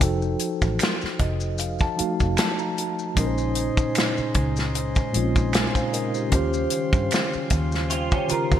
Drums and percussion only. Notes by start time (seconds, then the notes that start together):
0.01 kick, closed hi-hat, maracas
0.22 maracas
0.39 closed hi-hat, maracas
0.62 kick, maracas
0.79 finger snap, closed hi-hat, maracas
0.83 snare
1.01 snare, maracas
1.19 kick, closed hi-hat
1.40 maracas
1.58 closed hi-hat, maracas
1.79 kick, maracas
1.99 closed hi-hat
2.20 kick, maracas
2.37 finger snap, snare, closed hi-hat, maracas
2.59 maracas
2.77 closed hi-hat, maracas
2.99 maracas
3.17 kick, closed hi-hat, maracas
3.38 maracas
3.55 closed hi-hat, maracas
3.77 kick, maracas
3.95 finger snap, snare, closed hi-hat, maracas
4.17 maracas
4.34 kick, closed hi-hat
4.56 snare, maracas
4.75 closed hi-hat, maracas
4.96 kick, maracas
5.14 closed hi-hat
5.36 kick, maracas
5.53 finger snap, snare, closed hi-hat, maracas
5.75 kick, maracas
5.94 closed hi-hat, maracas
6.14 maracas
6.32 kick, closed hi-hat, maracas
6.53 maracas
6.70 closed hi-hat, maracas
6.93 kick, maracas
7.11 finger snap, snare, closed hi-hat, maracas
7.33 maracas
7.50 kick, closed hi-hat, maracas
7.72 snare, maracas
7.90 closed hi-hat, maracas
8.11 kick, maracas
8.29 closed hi-hat, maracas
8.52 kick, maracas